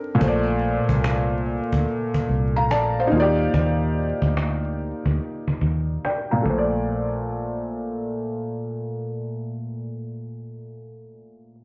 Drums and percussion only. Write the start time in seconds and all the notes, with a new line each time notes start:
0.21 cajon bass
0.65 cajon slap
0.89 cajon bass
1.04 cajon slap
1.46 cajon slap
1.72 cajon bass
1.90 cajon slap
2.14 cajon bass
2.29 cajon slap
2.71 cajon slap
3.12 cajon slap
3.54 cajon bass
3.98 cajon slap
4.22 cajon bass
4.37 cajon slap
4.79 cajon slap
5.05 cajon bass
5.23 cajon slap
5.48 cajon bass
5.61 cajon bass
6.05 cajon slap
6.46 cajon bass